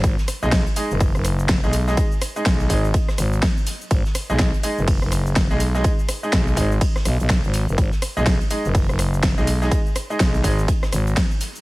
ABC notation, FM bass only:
X:1
M:4/4
L:1/16
Q:"Swing 16ths" 1/4=124
K:G#m
V:1 name="FM bass" clef=bass
G,,, z2 B,,,2 z2 F,,,2 F,,,4 B,,,3 | z4 B,,,2 G,,,2 z2 G,,,2 z4 | G,,, z2 B,,,2 z2 F,,,2 F,,,4 B,,,3 | z4 B,,,2 G,,,2 z2 B,,, B,,,2 G,,,2 F,,, |
G,,, z2 B,,,2 z2 F,,,2 F,,,4 B,,,3 | z4 B,,,2 G,,,2 z2 G,,,2 z4 |]